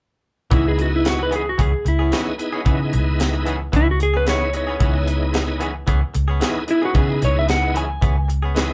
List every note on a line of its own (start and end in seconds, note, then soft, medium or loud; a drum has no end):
0.51 1.55 C#2 medium
0.51 0.66 E3 medium
0.51 1.41 B3 medium
0.51 0.66 B3 medium
0.51 0.65 C#4 medium
0.51 1.42 D#4 medium
0.51 1.42 E4 medium
0.51 0.67 E4 medium
0.51 1.42 G#4 medium
0.51 0.64 G#4 medium
0.51 kick medium
0.51 closed hi-hat medium
0.66 0.79 G#4 medium
0.66 muted clean electric guitar stroke soft
0.78 0.94 F#4 medium
0.78 muted clean electric guitar stroke soft
0.78 closed hi-hat medium
0.96 1.06 E4 medium
1.04 muted clean electric guitar stroke soft
1.04 snare loud
1.04 closed hi-hat medium
1.09 1.21 F#4 medium
1.19 1.33 B4 medium
1.19 muted clean electric guitar stroke soft
1.31 1.46 E3 medium
1.31 1.46 B3 medium
1.31 1.45 C#4 medium
1.31 1.44 G#4 medium
1.31 closed hi-hat medium
1.36 1.48 G#4 medium
1.46 1.60 F#4 medium
1.46 muted clean electric guitar stroke soft
1.58 1.72 C#2 medium
1.58 1.73 E3 medium
1.58 1.73 B3 medium
1.58 1.72 C#4 medium
1.58 1.71 G#4 medium
1.58 1.86 G#4 medium
1.58 kick medium
1.58 closed hi-hat medium
1.72 muted clean electric guitar stroke soft
1.85 2.10 C#2 medium
1.85 2.13 E4 medium
1.85 muted clean electric guitar stroke soft
1.85 closed hi-hat medium
1.99 2.11 B3 soft
1.99 2.12 C#4 soft
1.99 2.12 G#4 soft
2.11 2.29 E3 medium
2.11 2.35 B3 medium
2.11 2.29 B3 medium
2.11 2.30 C#4 medium
2.11 2.35 D#4 medium
2.11 2.35 E4 medium
2.11 2.35 G#4 medium
2.11 2.30 G#4 medium
2.11 snare loud
2.11 closed hi-hat medium
2.38 2.61 B3 medium
2.38 2.62 D#4 medium
2.38 2.62 E4 medium
2.38 2.62 G#4 medium
2.38 muted clean electric guitar stroke soft
2.38 closed hi-hat medium
2.53 2.65 B3 soft
2.53 2.65 C#4 soft
2.53 2.65 G#4 medium
2.65 2.95 C#3 medium
2.65 2.80 E3 medium
2.65 3.56 B3 medium
2.65 2.80 B3 medium
2.65 2.80 C#4 medium
2.65 3.56 D#4 medium
2.65 3.56 E4 medium
2.65 3.56 G#4 medium
2.65 2.79 G#4 medium
2.65 kick medium
2.65 closed hi-hat medium
2.80 muted clean electric guitar stroke soft
2.92 3.70 C#2 medium
2.92 muted clean electric guitar stroke soft
2.92 closed hi-hat medium
3.19 muted clean electric guitar stroke soft
3.19 snare loud
3.19 closed hi-hat medium
3.34 muted clean electric guitar stroke soft
3.46 3.61 E3 medium
3.46 3.60 B3 medium
3.46 3.60 C#4 medium
3.46 3.59 G#4 medium
3.46 closed hi-hat medium
3.60 muted clean electric guitar stroke soft
3.72 4.76 C#2 medium
3.72 3.87 E3 medium
3.72 3.87 B3 medium
3.72 3.87 C#4 medium
3.72 3.86 G#4 medium
3.72 kick medium
3.72 closed hi-hat medium
3.76 3.89 E4 medium
3.87 4.01 F#4 medium
3.87 muted clean electric guitar stroke soft
4.00 4.15 G#4 medium
4.00 muted clean electric guitar stroke soft
4.00 closed hi-hat medium
4.14 4.25 B3 soft
4.14 4.26 C#4 soft
4.14 4.26 G#4 soft
4.14 4.28 B4 medium
4.26 4.43 E3 medium
4.26 4.49 B3 medium
4.26 4.44 B3 medium
4.26 4.44 C#4 medium
4.26 4.50 D#4 medium
4.26 4.50 E4 medium
4.26 4.50 G#4 medium
4.26 4.45 G#4 medium
4.26 4.54 C#5 medium
4.26 snare medium
4.26 closed hi-hat medium
4.53 4.76 B3 medium
4.53 4.76 D#4 medium
4.53 4.76 E4 medium
4.53 4.77 G#4 medium
4.53 5.59 C#5 medium
4.53 muted clean electric guitar stroke soft
4.53 closed hi-hat medium
4.67 4.79 B3 soft
4.67 4.80 C#4 soft
4.67 4.80 G#4 soft
4.80 5.84 C#2 medium
4.80 4.95 E3 medium
4.80 5.71 B3 medium
4.80 4.95 B3 medium
4.80 4.94 C#4 medium
4.80 5.71 D#4 medium
4.80 5.71 E4 medium
4.80 5.71 G#4 medium
4.80 4.93 G#4 medium
4.80 kick medium
4.80 closed hi-hat medium
4.95 muted clean electric guitar stroke soft
5.07 muted clean electric guitar stroke soft
5.07 closed hi-hat medium
5.34 muted clean electric guitar stroke soft
5.34 snare loud
5.34 closed hi-hat medium
5.48 muted clean electric guitar stroke soft
5.60 5.75 E3 medium
5.60 5.75 B3 medium
5.60 5.74 C#4 medium
5.60 5.73 G#4 medium
5.60 closed hi-hat medium
5.74 muted clean electric guitar stroke soft
5.87 6.01 C#2 medium
5.87 6.02 E3 medium
5.87 6.02 B3 medium
5.87 6.01 C#4 medium
5.87 6.00 G#4 medium
5.87 kick medium
5.87 closed hi-hat medium
6.01 muted clean electric guitar stroke soft
6.14 6.40 C#2 medium
6.14 muted clean electric guitar stroke soft
6.14 closed hi-hat medium
6.28 6.40 B3 soft
6.28 6.41 C#4 medium
6.28 6.41 G#4 medium
6.40 6.58 E3 medium
6.40 6.64 B3 medium
6.40 6.58 B3 medium
6.40 6.59 C#4 medium
6.40 6.64 D#4 medium
6.40 6.64 E4 medium
6.40 6.65 G#4 loud
6.40 6.59 G#4 medium
6.40 snare loud
6.40 closed hi-hat medium
6.67 6.90 B3 medium
6.67 6.91 D#4 soft
6.67 6.91 E4 medium
6.67 6.83 E4 medium
6.67 6.91 G#4 medium
6.67 muted clean electric guitar stroke soft
6.67 closed hi-hat medium
6.82 6.94 B3 soft
6.82 6.94 C#4 soft
6.82 6.96 F#4 medium
6.82 6.95 G#4 soft
6.93 7.24 C#3 medium
6.93 7.09 E3 medium
6.93 7.84 B3 medium
6.93 7.09 B3 medium
6.93 7.08 C#4 medium
6.93 7.85 D#4 medium
6.93 7.85 E4 medium
6.93 7.85 G#4 medium
6.93 7.08 G#4 medium
6.93 kick loud
6.93 closed hi-hat medium
6.98 7.22 G#4 medium
7.09 muted clean electric guitar stroke soft
7.21 7.98 C#2 medium
7.21 7.37 C#5 medium
7.21 muted clean electric guitar stroke soft
7.21 closed hi-hat medium
7.39 7.50 E5 medium
7.48 7.76 F#5 medium
7.48 muted clean electric guitar stroke soft
7.48 snare loud
7.48 closed hi-hat medium
7.63 muted clean electric guitar stroke soft
7.74 7.89 E3 medium
7.74 7.90 B3 medium
7.74 7.89 C#4 medium
7.74 7.88 G#4 medium
7.74 8.28 G#5 medium
7.74 closed hi-hat medium
7.89 muted clean electric guitar stroke soft
8.02 8.73 C#2 medium
8.02 8.16 E3 medium
8.02 8.16 B3 medium
8.02 8.16 C#4 medium
8.02 8.15 G#4 medium
8.02 kick medium
8.02 closed hi-hat medium
8.16 muted clean electric guitar stroke soft
8.28 muted clean electric guitar stroke soft
8.28 closed hi-hat medium
8.43 8.55 B3 soft
8.43 8.56 C#4 soft
8.43 8.55 G#4 medium
8.55 8.72 E3 medium
8.55 8.73 B3 medium
8.55 8.73 C#4 medium
8.55 8.73 D#4 medium
8.55 8.73 E4 medium
8.55 8.73 G#4 medium
8.55 snare loud
8.55 closed hi-hat medium